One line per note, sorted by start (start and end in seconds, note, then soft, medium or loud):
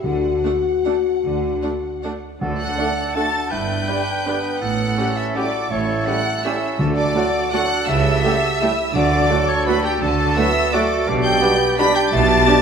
0.03 0.37 D2 medium
0.03 0.37 D3 medium
0.03 0.61 D3 medium
0.03 2.23 F#4 medium
0.03 2.19 F#5 medium
0.44 0.53 A3 medium
0.44 0.52 D4 soft
0.44 0.53 D5 soft
0.44 0.53 F#5 soft
0.85 0.93 A3 soft
0.85 0.94 D4 medium
0.85 0.94 D5 soft
0.85 0.94 F#5 soft
1.23 1.56 D2 medium
1.23 1.56 D3 medium
1.62 1.71 A3 soft
1.62 1.72 D4 soft
1.62 1.70 D5 soft
1.62 1.70 F#5 soft
2.03 2.12 A3 soft
2.03 2.12 D4 soft
2.03 2.11 D5 soft
2.03 2.11 F#5 soft
2.41 2.72 D2 medium
2.41 2.71 D3 medium
2.41 2.93 D3 medium
2.41 3.12 D4 medium
2.41 2.75 F#4 medium
2.41 3.12 A4 medium
2.59 3.11 F#5 medium
2.59 3.17 F#5 medium
2.59 3.11 F#6 medium
2.77 2.91 D3 medium
2.77 2.91 A3 medium
2.77 2.91 D4 medium
2.77 3.17 D4 medium
2.77 2.86 D4 medium
2.77 2.91 A4 medium
2.77 2.86 A4 soft
3.15 3.29 D3 medium
3.15 3.28 A3 medium
3.15 3.50 D4 medium
3.15 3.29 D4 medium
3.15 3.24 D4 medium
3.15 3.54 F#4 medium
3.15 3.28 A4 medium
3.15 3.24 A4 medium
3.15 3.52 A4 medium
3.15 3.53 A5 medium
3.15 3.52 A5 medium
3.15 3.51 A6 medium
3.50 3.82 G1 medium
3.50 3.82 G2 medium
3.50 4.63 D4 medium
3.50 3.90 E4 medium
3.50 4.61 B4 medium
3.50 4.61 G5 medium
3.50 4.59 G6 medium
3.88 4.02 D3 medium
3.88 4.02 G3 medium
3.88 4.02 D4 medium
3.88 3.96 D4 soft
3.88 4.28 D4 medium
3.88 4.02 B4 medium
3.88 3.96 B4 medium
4.25 4.38 D3 medium
4.25 4.39 G3 medium
4.25 4.97 B3 medium
4.25 4.39 D4 medium
4.25 4.34 D4 medium
4.25 4.39 B4 medium
4.25 4.34 B4 medium
4.61 4.92 A1 medium
4.61 4.91 A2 medium
4.61 5.70 E4 medium
4.61 5.69 A4 medium
4.61 5.18 F#5 medium
4.61 5.16 F#5 medium
4.61 5.16 F#6 medium
4.97 5.11 A2 medium
4.97 5.11 G3 medium
4.97 5.37 C#4 medium
4.97 5.06 C#4 medium
4.97 5.12 C#4 medium
4.97 5.06 G4 medium
4.97 5.12 A4 medium
5.16 5.35 E5 medium
5.16 5.37 E5 medium
5.16 5.25 E6 medium
5.35 5.48 A2 medium
5.35 5.48 G3 medium
5.35 5.48 C#4 medium
5.35 5.44 C#4 medium
5.35 5.73 F#4 medium
5.35 5.44 G4 medium
5.35 5.48 A4 medium
5.35 5.73 D5 medium
5.35 5.70 D5 medium
5.35 5.71 D6 medium
5.71 6.01 A1 medium
5.71 6.01 A2 medium
5.71 6.43 E4 medium
5.71 6.44 E4 medium
5.71 6.43 A4 medium
5.71 6.06 C#5 medium
5.71 6.08 C#5 medium
5.71 6.08 C#6 medium
6.06 6.21 A2 medium
6.06 6.21 G3 medium
6.06 6.20 C#4 medium
6.06 6.15 C#4 medium
6.06 6.15 G4 medium
6.06 6.20 A4 medium
6.06 6.43 F#5 medium
6.06 6.44 F#5 medium
6.06 6.44 F#6 loud
6.43 6.57 A2 medium
6.43 6.57 G3 medium
6.43 6.57 C#4 medium
6.43 6.82 C#4 medium
6.43 6.53 C#4 medium
6.43 6.81 E4 medium
6.43 6.53 G4 medium
6.43 6.57 A4 medium
6.43 6.79 A4 medium
6.43 6.78 E5 medium
6.43 6.79 E5 medium
6.43 6.79 E6 medium
6.78 7.09 D2 medium
6.78 7.08 D3 medium
6.78 7.30 D3 medium
6.78 7.15 D4 medium
6.78 7.52 F#4 medium
6.78 7.52 A4 medium
6.95 7.49 D5 medium
6.95 7.49 D6 medium
7.14 7.28 A2 medium
7.14 7.28 F#3 medium
7.14 7.23 A3 medium
7.14 7.29 A3 medium
7.14 7.23 F#4 medium
7.14 7.53 F#4 medium
7.14 7.29 A4 medium
7.52 7.66 A2 medium
7.52 7.66 F#3 medium
7.52 7.66 A3 medium
7.52 7.61 A3 medium
7.52 7.91 D4 medium
7.52 7.90 F#4 medium
7.52 7.61 F#4 medium
7.52 7.66 A4 medium
7.52 7.88 A4 medium
7.52 7.89 F#5 medium
7.52 7.88 F#6 loud
7.88 8.18 C#2 medium
7.88 8.18 C#3 medium
7.88 8.25 E4 medium
7.88 8.69 G4 medium
7.88 8.67 A4 medium
7.88 8.66 E5 medium
7.88 8.95 E5 loud
7.88 8.95 E6 loud
8.23 8.37 A2 medium
8.23 8.37 G3 medium
8.23 8.32 A3 medium
8.23 8.37 A3 medium
8.23 8.61 F#4 medium
8.23 8.32 G4 medium
8.23 8.37 A4 medium
8.60 8.73 A2 medium
8.60 8.73 G3 medium
8.60 8.73 A3 medium
8.60 8.69 A3 medium
8.60 8.94 E4 medium
8.60 8.69 G4 medium
8.60 8.73 A4 medium
8.94 9.24 D2 medium
8.94 9.24 D3 loud
8.94 9.45 D3 medium
8.94 9.33 F#4 medium
8.94 9.98 F#4 medium
8.94 9.97 A4 medium
8.94 9.47 D5 medium
8.94 9.50 D5 loud
8.94 9.49 D6 loud
9.30 9.43 A2 medium
9.30 9.43 F#3 medium
9.30 9.43 A3 medium
9.30 9.38 A3 medium
9.30 10.10 D4 medium
9.30 9.38 F#4 medium
9.30 9.43 A4 medium
9.48 9.69 C#5 loud
9.48 9.67 C#5 medium
9.48 9.67 C#6 loud
9.66 9.79 A2 medium
9.66 9.79 F#3 medium
9.66 9.79 A3 medium
9.66 9.75 A3 medium
9.66 9.75 F#4 medium
9.66 9.79 A4 medium
9.66 9.84 B4 medium
9.66 9.86 B4 medium
9.66 9.84 B5 loud
9.84 10.03 G4 medium
9.84 10.01 G4 medium
9.84 10.01 G5 medium
10.01 10.30 D2 medium
10.01 10.30 D3 medium
10.01 10.72 F#4 medium
10.01 10.37 A4 medium
10.01 10.36 A4 medium
10.01 10.72 A4 medium
10.01 10.36 A5 loud
10.36 10.51 A2 medium
10.36 10.50 F#3 medium
10.36 10.50 A3 medium
10.36 10.45 A3 medium
10.36 10.75 B3 medium
10.36 10.45 F#4 medium
10.36 10.50 A4 medium
10.36 10.73 E5 loud
10.36 10.74 E5 loud
10.36 10.73 E6 loud
10.73 10.86 A2 medium
10.73 10.86 F#3 medium
10.73 10.81 A3 medium
10.73 11.09 A3 medium
10.73 10.86 A3 medium
10.73 10.81 F#4 medium
10.73 11.09 F#4 medium
10.73 11.10 A4 medium
10.73 10.86 A4 medium
10.73 11.07 D5 medium
10.73 11.08 D5 medium
10.73 11.08 D6 loud
11.07 11.36 B1 medium
11.07 11.36 B2 loud
11.07 11.41 D4 medium
11.07 11.78 G4 medium
11.07 11.79 D5 medium
11.24 11.75 G5 loud
11.24 11.75 G6 loud
11.42 11.55 B2 medium
11.42 11.55 G3 medium
11.42 11.78 B3 medium
11.42 11.50 D4 medium
11.42 11.56 D4 medium
11.42 11.50 G4 medium
11.78 11.91 B2 medium
11.78 11.91 G3 medium
11.78 11.91 D4 medium
11.78 12.12 D4 loud
11.78 11.87 D4 medium
11.78 11.91 G4 medium
11.78 12.62 G4 loud
11.78 11.87 G4 medium
11.78 12.62 D5 loud
11.78 11.85 B5 loud
11.78 11.97 B5 loud
11.78 11.96 B6 loud
11.95 12.11 G5 medium
11.95 12.03 G5 loud
11.95 12.13 G6 loud
12.11 12.41 B1 loud
12.11 12.41 B2 loud
12.11 12.49 E4 loud
12.11 12.62 A5 loud
12.11 12.62 A6 loud
12.46 12.60 B2 medium
12.46 12.60 G3 medium
12.46 12.60 D4 medium
12.46 12.55 D4 medium
12.46 12.62 D4 medium
12.46 12.60 G4 medium
12.46 12.55 G4 medium